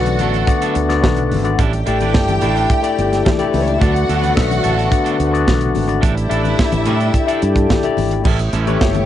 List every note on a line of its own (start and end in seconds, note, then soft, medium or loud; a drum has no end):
0.00 0.20 B1 loud
0.00 0.46 D3 medium
0.00 1.56 D3 medium
0.00 8.21 A3 medium
0.00 0.47 B3 medium
0.00 1.56 B3 medium
0.00 0.47 F#4 medium
0.00 1.26 F#4 loud
0.00 1.56 F#4 medium
0.00 0.48 D5 medium
0.00 1.26 F#5 loud
0.06 muted clean electric guitar stroke soft
0.06 closed hi-hat soft
0.06 high conga medium
0.19 0.43 A1 medium
0.19 0.34 F#3 medium
0.19 0.34 B3 medium
0.19 0.34 D4 medium
0.19 0.33 A4 medium
0.19 closed hi-hat medium
0.19 low conga medium
0.34 0.46 F#3 soft
0.34 0.46 B3 soft
0.34 0.45 D4 soft
0.34 0.45 A4 medium
0.34 closed hi-hat soft
0.46 0.80 D3 medium
0.46 0.80 B3 medium
0.46 0.80 F#4 medium
0.46 0.81 D5 loud
0.46 muted clean electric guitar stroke soft
0.46 kick loud
0.46 closed hi-hat medium
0.62 0.75 F#3 medium
0.62 0.76 B3 medium
0.62 0.76 D4 medium
0.62 0.76 A4 medium
0.62 closed hi-hat medium
0.62 muted conga soft
0.75 1.04 D2 medium
0.75 muted clean electric guitar stroke soft
0.75 closed hi-hat medium
0.88 1.33 D3 medium
0.88 1.33 B3 medium
0.88 1.34 F#4 medium
0.88 1.33 D5 medium
0.88 muted clean electric guitar stroke soft
0.88 snare soft
0.88 closed hi-hat soft
1.04 1.33 B1 medium
1.04 muted clean electric guitar stroke soft
1.04 kick loud
1.04 snare loud
1.04 high conga medium
1.16 muted clean electric guitar stroke soft
1.16 closed hi-hat soft
1.16 low conga medium
1.31 1.54 G#1 medium
1.31 open hi-hat medium
1.31 high conga medium
1.43 1.58 D3 medium
1.43 1.58 B3 medium
1.43 1.58 F#4 medium
1.43 1.59 D5 medium
1.43 muted clean electric guitar stroke soft
1.43 closed hi-hat soft
1.58 1.82 A1 medium
1.58 1.73 G3 medium
1.58 3.79 D4 medium
1.58 1.73 D4 medium
1.58 1.73 E4 medium
1.58 3.78 G4 medium
1.58 3.31 G4 medium
1.58 1.72 A4 medium
1.58 3.31 G5 loud
1.58 kick loud
1.58 closed hi-hat medium
1.73 muted clean electric guitar stroke soft
1.73 closed hi-hat soft
1.73 muted conga soft
1.86 2.15 A1 medium
1.86 1.97 G3 medium
1.86 2.30 A3 medium
1.86 1.97 D4 medium
1.86 2.30 E4 medium
1.86 1.98 E4 medium
1.86 2.31 G4 medium
1.86 1.98 A4 medium
1.86 2.31 D5 medium
1.86 closed hi-hat medium
2.00 2.12 G3 medium
2.00 2.12 D4 medium
2.00 2.12 E4 medium
2.00 2.12 B4 medium
2.00 closed hi-hat soft
2.00 high conga medium
2.14 2.38 G1 loud
2.14 kick loud
2.14 snare loud
2.28 muted clean electric guitar stroke soft
2.28 closed hi-hat soft
2.28 high conga medium
2.41 2.65 A1 medium
2.41 2.56 G3 medium
2.41 2.75 A3 medium
2.41 2.55 D4 medium
2.41 2.75 E4 medium
2.41 2.55 E4 medium
2.41 2.75 G4 medium
2.41 2.54 A4 medium
2.41 2.76 D5 medium
2.41 closed hi-hat medium
2.41 low conga medium
2.55 2.68 G3 soft
2.55 2.67 D4 medium
2.55 2.67 E4 soft
2.55 2.67 A4 medium
2.55 closed hi-hat soft
2.70 kick loud
2.70 closed hi-hat medium
2.70 muted conga soft
2.82 3.27 A3 medium
2.82 3.27 E4 medium
2.82 3.28 G4 medium
2.82 3.28 D5 medium
2.82 muted clean electric guitar stroke medium
2.82 closed hi-hat medium
2.98 3.21 G1 medium
2.98 closed hi-hat medium
3.12 muted clean electric guitar stroke soft
3.12 snare soft
3.12 closed hi-hat soft
3.25 muted clean electric guitar stroke soft
3.25 kick loud
3.25 snare loud
3.25 muted conga soft
3.25 high conga medium
3.38 3.46 G3 medium
3.38 3.72 A3 medium
3.38 3.72 E4 medium
3.38 3.72 G4 medium
3.38 3.47 G4 medium
3.38 3.72 D5 medium
3.38 muted clean electric guitar stroke soft
3.38 closed hi-hat soft
3.38 muted conga soft
3.38 low conga medium
3.46 3.53 A3 medium
3.46 3.53 A4 medium
3.53 3.77 C#2 medium
3.53 3.60 B3 medium
3.53 3.60 B4 medium
3.53 open hi-hat soft
3.53 high conga medium
3.60 3.67 C#4 medium
3.60 3.67 C#5 medium
3.67 3.74 D4 medium
3.67 3.74 D5 medium
3.67 muted clean electric guitar stroke soft
3.67 closed hi-hat soft
3.73 3.80 E4 medium
3.73 3.80 E5 loud
3.79 4.04 D2 medium
3.79 4.24 D3 medium
3.79 6.02 D3 medium
3.79 3.95 F#3 medium
3.79 4.24 B3 medium
3.79 3.95 B3 medium
3.79 6.02 B3 medium
3.79 3.94 D4 medium
3.79 5.71 F#4 loud
3.79 4.25 F#4 medium
3.79 6.02 F#4 medium
3.79 3.94 A4 medium
3.79 4.25 D5 medium
3.79 5.70 F#5 loud
3.79 kick loud
3.79 closed hi-hat medium
3.79 muted conga soft
3.95 muted clean electric guitar stroke medium
3.95 closed hi-hat soft
4.09 4.32 D2 medium
4.09 4.20 F#3 medium
4.09 4.20 B3 medium
4.09 4.20 D4 medium
4.09 4.20 A4 medium
4.09 closed hi-hat medium
4.22 4.34 F#3 soft
4.22 4.34 B3 medium
4.22 4.33 D4 medium
4.22 4.33 B4 medium
4.22 closed hi-hat soft
4.22 high conga medium
4.35 4.60 B1 loud
4.35 4.80 D3 medium
4.35 4.80 B3 medium
4.35 4.80 F#4 medium
4.35 4.81 E5 medium
4.35 muted clean electric guitar stroke soft
4.35 kick loud
4.35 snare loud
4.35 muted conga soft
4.49 muted clean electric guitar stroke soft
4.49 closed hi-hat soft
4.49 muted conga soft
4.49 high conga medium
4.63 4.87 A1 medium
4.63 4.78 F#3 medium
4.63 4.77 B3 medium
4.63 4.77 D4 medium
4.63 4.76 A4 medium
4.63 closed hi-hat medium
4.63 low conga medium
4.78 4.90 F#3 soft
4.78 4.89 B3 medium
4.78 4.89 D4 medium
4.78 4.89 A4 medium
4.78 closed hi-hat soft
4.90 5.24 D3 medium
4.90 5.24 B3 medium
4.90 5.24 F#4 medium
4.90 5.25 D5 medium
4.90 kick loud
4.90 closed hi-hat medium
5.04 5.16 F#3 medium
5.04 5.17 B3 medium
5.04 5.17 D4 medium
5.04 5.18 A4 medium
5.04 closed hi-hat medium
5.17 5.48 D2 medium
5.17 muted clean electric guitar stroke soft
5.17 closed hi-hat medium
5.31 5.77 D3 medium
5.31 5.77 B3 medium
5.31 5.78 F#4 medium
5.31 5.78 D5 loud
5.31 muted clean electric guitar stroke soft
5.31 closed hi-hat soft
5.46 5.71 B1 medium
5.46 muted clean electric guitar stroke soft
5.46 kick loud
5.46 snare loud
5.46 muted conga soft
5.46 high conga medium
5.59 muted clean electric guitar stroke soft
5.59 closed hi-hat soft
5.59 muted conga soft
5.59 low conga medium
5.75 5.99 G#1 medium
5.75 open hi-hat soft
5.75 high conga medium
5.87 6.02 D3 medium
5.87 6.02 B3 medium
5.87 6.02 F#4 medium
5.87 6.03 D5 medium
5.87 muted clean electric guitar stroke soft
5.87 closed hi-hat soft
6.01 6.26 A1 medium
6.01 6.16 G3 medium
6.01 6.15 D4 medium
6.01 8.23 D4 medium
6.01 6.14 E4 medium
6.01 7.93 E4 medium
6.01 8.22 G4 medium
6.01 6.14 A4 medium
6.01 7.93 E5 loud
6.01 kick loud
6.01 closed hi-hat medium
6.01 muted conga soft
6.15 muted clean electric guitar stroke soft
6.15 closed hi-hat soft
6.15 muted conga soft
6.29 6.54 A1 medium
6.29 6.41 G3 medium
6.29 6.74 A3 medium
6.29 6.41 D4 medium
6.29 6.74 E4 medium
6.29 6.41 E4 medium
6.29 6.75 G4 medium
6.29 6.42 A4 medium
6.29 6.75 D5 medium
6.29 closed hi-hat medium
6.43 6.56 G3 soft
6.43 6.56 D4 medium
6.43 6.55 E4 medium
6.43 6.55 B4 medium
6.43 closed hi-hat soft
6.43 high conga medium
6.58 muted clean electric guitar stroke soft
6.58 kick loud
6.58 snare loud
6.58 muted conga soft
6.72 6.84 A1 medium
6.72 muted clean electric guitar stroke medium
6.72 closed hi-hat soft
6.72 muted conga soft
6.72 high conga medium
6.86 7.09 A2 medium
6.86 7.00 G3 medium
6.86 7.19 A3 medium
6.86 7.00 D4 medium
6.86 7.20 E4 medium
6.86 6.99 E4 medium
6.86 7.20 G4 medium
6.86 6.99 A4 medium
6.86 7.21 D5 medium
6.86 closed hi-hat medium
6.86 low conga medium
7.00 7.12 G3 medium
7.00 7.12 D4 soft
7.00 7.11 E4 soft
7.00 7.11 A4 medium
7.00 closed hi-hat soft
7.14 muted clean electric guitar stroke soft
7.14 kick medium
7.14 closed hi-hat medium
7.14 muted conga soft
7.26 7.41 G3 medium
7.26 7.71 A3 medium
7.26 7.41 D4 medium
7.26 7.71 E4 medium
7.26 7.42 E4 medium
7.26 7.72 G4 medium
7.26 7.42 A4 medium
7.26 7.72 D5 medium
7.26 closed hi-hat medium
7.42 7.66 G2 medium
7.42 muted clean electric guitar stroke soft
7.42 closed hi-hat medium
7.56 muted clean electric guitar stroke soft
7.56 kick medium
7.56 closed hi-hat soft
7.69 muted clean electric guitar stroke soft
7.69 kick loud
7.69 snare loud
7.69 high conga medium
7.83 8.17 A3 medium
7.83 8.17 E4 medium
7.83 8.17 G4 medium
7.83 8.17 D5 medium
7.83 muted clean electric guitar stroke soft
7.83 closed hi-hat soft
7.83 muted conga soft
7.83 low conga medium
7.97 8.21 G#1 medium
7.97 open hi-hat medium
7.97 high conga medium
8.11 muted clean electric guitar stroke soft
8.11 closed hi-hat soft
8.24 8.48 A1 medium
8.24 8.40 G3 medium
8.24 9.06 A3 medium
8.24 8.40 C#4 medium
8.24 9.06 E4 medium
8.24 8.40 E4 medium
8.24 9.06 G4 medium
8.24 8.39 A4 medium
8.24 9.06 C#5 medium
8.24 kick loud
8.24 crash medium
8.24 low conga medium
8.39 muted clean electric guitar stroke soft
8.39 closed hi-hat soft
8.39 muted conga soft
8.53 8.76 A1 medium
8.53 8.64 G3 medium
8.53 8.64 C#4 medium
8.53 8.65 E4 medium
8.53 8.65 A4 medium
8.53 closed hi-hat medium
8.67 8.79 G3 medium
8.67 9.06 A3 medium
8.67 8.79 C#4 medium
8.67 9.06 E4 medium
8.67 8.78 E4 medium
8.67 9.06 G4 medium
8.67 8.78 B4 medium
8.67 9.06 C#5 loud
8.67 closed hi-hat soft
8.67 high conga medium
8.81 9.04 G1 loud
8.81 muted clean electric guitar stroke soft
8.81 kick loud
8.81 snare loud
8.94 muted clean electric guitar stroke soft
8.94 closed hi-hat soft
8.94 high conga medium